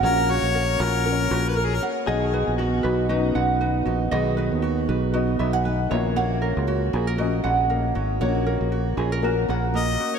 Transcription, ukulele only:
X:1
M:4/4
L:1/16
Q:"Swing 16ths" 1/4=118
K:B
V:1 name="Ukulele"
[Fcf]2 F2 A2 f2 A2 F2 A2 f2 | [df]2 B2 F2 B2 F2 f2 B2 F2 | [df]2 B2 F2 B2 F2 e f B2 c2 | [cf]2 A2 F2 G A F2 f2 A2 F2 |
[cf]2 A2 F2 G A F2 f2 A2 F2 |]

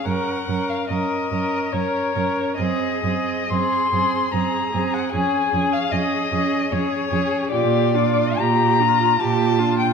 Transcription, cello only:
X:1
M:3/4
L:1/8
Q:1/4=74
K:Db
V:1 name="Cello" clef=bass
G,, G,, G,, G,, G,, G,, | G,, G,, G,, G,, G,, G,, | F,, F,, F,, F,, F,, F,, | [K:Gdor] B,,2 B,,2 B,,2 |]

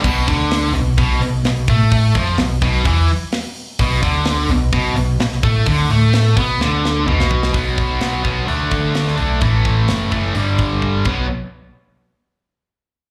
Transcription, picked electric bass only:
X:1
M:4/4
L:1/8
Q:1/4=128
K:Alyd
V:1 name="Picked electric bass" clef=bass
B,,, =D,,2 B,,, B,,, B,,, B,,, A,,- | A,, =F,, B,,, B,,, E,, z3 | B,,, =D,,2 B,,, B,,, B,,, B,,, A,, | =D,, A,,2 B,, D,,2 B,,,2 |
B,,, B,,, B,,,2 =D,, D,, D,, B,,, | A,,, A,,, F,,,2 =G,,, G,,, G,,, B,,, | z8 |]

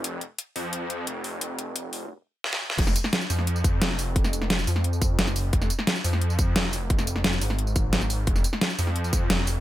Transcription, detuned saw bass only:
X:1
M:4/4
L:1/8
Q:1/4=175
K:Fphr
V:1 name="Detuned saw bass" clef=bass
F,,, z2 F,,3 F,,,2- | F,,,3 F,,, z4 | F,,, z2 F,,3 F,,,2- | F,,,3 F,,3 G,,,2 |
F,,, z2 F,,3 F,,,2- | F,,,3 A,,,4- A,,, | F,,, z2 F,,3 F,,,2 |]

